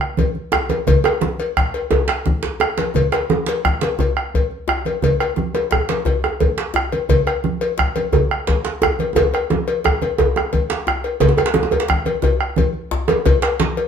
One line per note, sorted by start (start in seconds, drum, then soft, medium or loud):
0.01 bombo rim medium
0.17 bombo low medium
0.17 cowbell soft
0.17 high conga medium
0.35 high conga soft
0.52 bombo rim medium
0.52 djembe slap medium
0.52 djembe tone loud
0.52 djembe tone medium
0.69 cowbell soft
0.69 high conga medium
0.69 djembe tone medium
0.87 bombo low medium
0.87 cowbell medium
0.87 djembe slap soft
0.87 low conga medium
0.87 djembe bass medium
1.04 bombo rim medium
1.04 cowbell medium
1.04 djembe tone loud
1.21 djembe tone medium
1.21 high conga medium
1.39 cowbell medium
1.39 high conga soft
1.57 bombo rim medium
1.57 bombo low loud
1.57 djembe slap medium
1.74 cowbell soft
1.91 cowbell soft
1.91 djembe tone loud
1.91 djembe tone medium
1.91 low conga medium
1.91 djembe bass medium
2.08 bombo rim medium
2.08 djembe slap medium
2.08 djembe slap soft
2.26 bombo rim soft
2.26 bombo low medium
2.26 high conga medium
2.43 djembe slap medium
2.43 high conga soft
2.43 djembe bass soft
2.60 bombo rim loud
2.60 djembe slap soft
2.60 djembe tone loud
2.60 high conga soft
2.78 bombo rim soft
2.78 cowbell soft
2.78 djembe slap medium
2.78 high conga medium
2.94 bombo low loud
2.94 cowbell medium
2.94 djembe slap soft
2.94 djembe bass medium
2.94 low conga medium
3.12 bombo rim medium
3.12 cowbell medium
3.12 djembe slap medium
3.30 bombo rim soft
3.30 high conga medium
3.30 djembe tone medium
3.46 cowbell medium
3.46 djembe slap medium
3.65 bombo rim loud
3.65 bombo low loud
3.65 djembe slap medium
3.81 bombo rim soft
3.81 cowbell medium
3.81 djembe slap medium
3.81 high conga medium
3.99 bombo rim soft
3.99 cowbell soft
3.99 djembe tone medium
3.99 djembe bass medium
3.99 low conga medium
4.16 bombo rim medium
4.16 djembe slap soft
4.35 bombo low medium
4.35 cowbell soft
4.51 high conga soft
4.68 bombo rim medium
4.68 djembe slap medium
4.68 djembe tone medium
4.85 cowbell soft
4.85 high conga medium
5.02 bombo low medium
5.02 cowbell medium
5.02 djembe slap soft
5.02 djembe bass medium
5.02 low conga medium
5.20 bombo rim medium
5.20 cowbell soft
5.36 bombo rim soft
5.36 djembe tone medium
5.36 high conga medium
5.55 cowbell medium
5.55 djembe tone medium
5.71 bombo rim medium
5.71 bombo low medium
5.71 djembe slap medium
5.71 djembe bass medium
5.89 bombo rim soft
5.89 cowbell medium
5.89 djembe slap medium
5.89 high conga medium
6.05 bombo rim soft
6.05 cowbell soft
6.05 djembe tone medium
6.05 djembe bass medium
6.05 low conga medium
6.22 bombo rim medium
6.22 djembe slap soft
6.22 djembe tone medium
6.40 bombo low medium
6.40 cowbell soft
6.40 high conga medium
6.40 djembe bass medium
6.58 djembe slap medium
6.58 high conga soft
6.74 bombo rim medium
6.74 djembe slap medium
6.74 djembe tone medium
6.92 cowbell soft
6.92 high conga soft
7.09 bombo low medium
7.09 cowbell medium
7.09 djembe slap soft
7.09 djembe bass medium
7.09 low conga medium
7.27 bombo rim medium
7.27 cowbell soft
7.44 bombo rim soft
7.44 djembe tone medium
7.44 high conga medium
7.61 cowbell medium
7.78 bombo rim medium
7.78 bombo low medium
7.78 djembe slap medium
7.96 bombo rim soft
7.96 cowbell medium
7.96 high conga medium
8.12 bombo rim soft
8.12 cowbell soft
8.12 djembe tone medium
8.12 djembe bass medium
8.12 djembe bass loud
8.12 low conga medium
8.31 bombo rim medium
8.31 djembe slap soft
8.47 bombo low medium
8.47 cowbell soft
8.47 djembe slap medium
8.65 djembe slap medium
8.65 high conga soft
8.82 bombo rim medium
8.82 djembe slap medium
8.82 djembe tone medium
8.82 djembe bass medium
8.99 cowbell soft
8.99 high conga medium
9.15 bombo rim soft
9.15 bombo low medium
9.15 cowbell medium
9.15 djembe tone loud
9.15 djembe bass medium
9.15 low conga medium
9.34 bombo rim medium
9.34 cowbell medium
9.50 djembe slap soft
9.50 djembe tone medium
9.50 djembe tone loud
9.50 high conga medium
9.68 cowbell medium
9.68 djembe slap soft
9.68 high conga soft
9.84 bombo rim medium
9.84 bombo low medium
9.84 djembe slap medium
9.84 high conga soft
9.84 djembe tone loud
10.02 bombo rim soft
10.02 cowbell medium
10.02 djembe slap soft
10.02 high conga medium
10.18 bombo rim soft
10.18 cowbell soft
10.18 djembe tone loud
10.18 djembe tone medium
10.18 low conga medium
10.18 djembe bass medium
10.36 bombo rim medium
10.36 djembe slap soft
10.36 high conga soft
10.36 djembe tone medium
10.53 bombo rim soft
10.53 bombo low medium
10.53 cowbell soft
10.53 high conga medium
10.70 djembe slap medium
10.70 high conga soft
10.87 bombo rim medium
10.87 djembe slap medium
10.87 djembe tone medium
10.87 high conga soft
11.04 bombo rim soft
11.04 cowbell soft
11.04 djembe slap soft
11.20 bombo low medium
11.20 cowbell medium
11.20 djembe slap soft
11.20 djembe tone loud
11.20 djembe bass medium
11.20 low conga medium
11.29 djembe tone medium
11.37 bombo rim medium
11.37 cowbell medium
11.37 djembe bass medium
11.46 djembe slap medium
11.54 bombo rim soft
11.54 djembe tone loud
11.54 high conga medium
11.54 djembe tone medium
11.63 djembe tone medium
11.71 cowbell medium
11.71 djembe bass medium
11.80 djembe slap medium
11.88 bombo rim medium
11.88 bombo low loud
11.88 djembe slap medium
12.06 bombo rim soft
12.06 cowbell medium
12.06 high conga medium
12.22 bombo rim soft
12.22 cowbell medium
12.22 djembe tone medium
12.22 low conga medium
12.22 djembe bass medium
12.40 bombo rim medium
12.40 djembe slap soft
12.56 bombo low medium
12.56 cowbell medium
12.56 high conga medium
12.74 high conga soft
12.91 djembe slap medium
12.91 djembe tone medium
13.08 cowbell medium
13.08 djembe tone loud
13.08 high conga medium
13.25 bombo low medium
13.25 cowbell medium
13.25 djembe slap soft
13.25 low conga medium
13.25 djembe bass medium
13.42 bombo rim medium
13.42 cowbell medium
13.42 djembe slap medium
13.59 bombo rim soft
13.59 djembe slap medium
13.59 djembe tone medium
13.59 high conga medium
13.77 cowbell medium